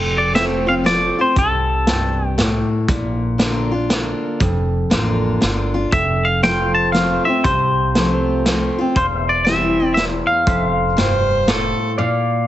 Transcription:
Already playing: F1 F2
0.18 D5
0.34 F3 A3 C4 F4 E5, snare, closed hi-hat
0.66 C4 F4 F5
0.84 F3 A3 C4 F4 D5, snare, closed hi-hat
1.19 C4 F4 C5
1.36 C2 C3 A4, kick, closed hi-hat
1.87 G2, snare, closed hi-hat
2.27 G4
2.38 A2, snare, closed hi-hat
2.88 A#1 A#2, kick, closed hi-hat
3.38 D3 A#3 D4 F4, snare, closed hi-hat
3.71 D4 F4
3.89 D3 A#3 D4 F4, snare, closed hi-hat
4.40 F1 F2, kick, closed hi-hat
4.90 A1 D3 A#3 D4 F4, snare, closed hi-hat
5.41 G1 D3 A#3 D4 F4, snare, closed hi-hat
5.74 D4 F4
5.92 F1 F2 E5, kick, closed hi-hat
6.25 F5
6.42 F3 A3 C4 F4 C5 F5 G5, snare, closed hi-hat
6.75 A5
6.92 F3 A3 C4 F4 F5, snare, closed hi-hat
7.25 C4 F4 E5
7.44 C2 C3 C5, kick, closed hi-hat
7.95 F3 A3 C4 F4, snare, closed hi-hat
8.45 F3 A3 C4 F4, snare, closed hi-hat
8.78 C4 F4
8.96 E1 E2 C5 F5, kick, closed hi-hat
9.17 E5
9.29 D5
9.45 E3 G3 C4 E5, snare, closed hi-hat
9.49 E4
9.80 C4 E4
9.94 E2 E5, snare, closed hi-hat
10.27 F5
10.47 F1 F2 C5 E5, kick, closed hi-hat
10.69 F5
10.97 G2 C5, snare, closed hi-hat
11.48 A2 A4, snare, closed hi-hat
11.98 A#2 D5 F5

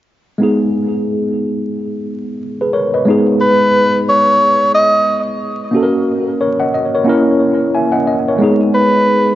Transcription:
0.38 G#3 B3 D#4
0.43 G#4
2.61 G#4 B4
2.74 A#4 C#5
2.94 B4 D#5
3.05 G#3 B3 D#4
3.10 G#4
3.41 B4
4.09 C#5
4.75 D#5
5.71 A#3 C#4 F#4
5.76 A4
5.83 A#4
6.41 A#4 C#5
6.60 D#5 F#5
6.74 D#5
6.95 A#4 C#5
7.04 A#3 C#4 E4
7.09 A#4
7.74 E5 G#5
7.92 D#5 F#5
8.07 D#5
8.28 A#4 C#5
8.38 G#3 B3 D#4
8.44 G#4
8.74 B4

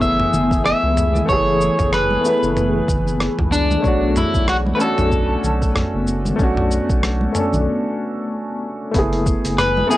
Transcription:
Already playing: F#1 E3 A3 B3 E4 G#4
0.01 E5, kick, cabasa
0.20 mid tom
0.33 F#1, low conga, cabasa
0.51 kick, cabasa
0.66 E5, cross-stick, cabasa
0.83 C#2
0.97 mid tom, cabasa
1.15 high conga, low conga, cabasa
1.25 F#1 A3 B3 C#5, kick, cabasa
1.30 E4 G#4
1.61 cabasa
1.79 F#1, kick, mid tom, cabasa
1.93 B4, cross-stick, cabasa
2.11 high conga
2.21 A3 B3
2.25 E4 B4, cabasa
2.43 F#1, cabasa
2.57 mid tom, cabasa
2.88 F#1, kick, low conga, cabasa
3.08 cabasa
3.20 cross-stick, cabasa
3.38 C#2, kick, mid tom
3.52 D4, cabasa
3.71 high conga, low conga, cabasa
3.80 B1 A3 C#5, kick
3.85 D4 F#4, cabasa
4.16 E4, mid tom, cabasa
4.34 B1, kick, cabasa
4.48 F#4, cross-stick, cabasa
4.67 high conga
4.75 A3 C#4 B4
4.80 D4 F#4 A4, cabasa
4.98 B1, mid tom, cabasa
5.12 kick, cabasa
5.44 B1, low conga, cabasa
5.62 kick, cabasa
5.76 cross-stick, mid tom, cabasa
5.94 F#1
6.07 cabasa
6.25 high conga, low conga, cabasa
6.36 B1 A3 C#4, kick, cabasa
6.41 D4 F#4
6.57 mid tom
6.71 cabasa
6.89 B1, kick, cabasa
7.03 cross-stick, cabasa
7.21 high conga
7.32 A3 C#4, mid tom, cabasa
7.37 D4 A4
7.52 B1, low conga, cabasa
8.91 F#1 E3 A3 B3 G#5, kick, open hi-hat, cabasa
8.96 E4 G#4
9.13 open hi-hat
9.26 kick, cabasa
9.45 F#1, open hi-hat, cabasa
9.58 B4, cross-stick, mid tom, open hi-hat, cabasa
9.77 high conga
9.87 A3 B3 G#4
9.91 E4 G#5, cabasa

